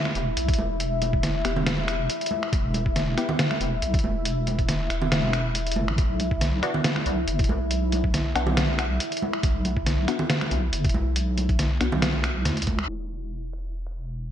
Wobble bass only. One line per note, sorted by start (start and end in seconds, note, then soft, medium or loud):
0.15 0.35 E1 medium
0.37 0.57 B1 medium
0.58 1.44 E1 medium
1.45 2.08 E1 medium
2.53 3.16 E1 medium
3.60 3.81 E1 medium
3.82 4.02 B1 medium
4.04 4.89 E1 medium
4.90 5.78 E1 medium
5.76 5.90 F#1 loud
5.88 5.97 A1 medium
5.98 6.62 B1 loud
7.06 7.26 B1 medium
7.28 7.48 F#1 medium
7.49 8.34 B1 medium
8.36 8.99 B1 medium
9.43 10.07 B1 loud
10.51 10.71 B1 medium
10.73 10.93 F#1 medium
10.94 11.79 B1 medium
11.81 12.47 B1 medium
12.45 12.65 D2 loud
12.67 12.87 C#2 medium
12.89 14.32 E1 medium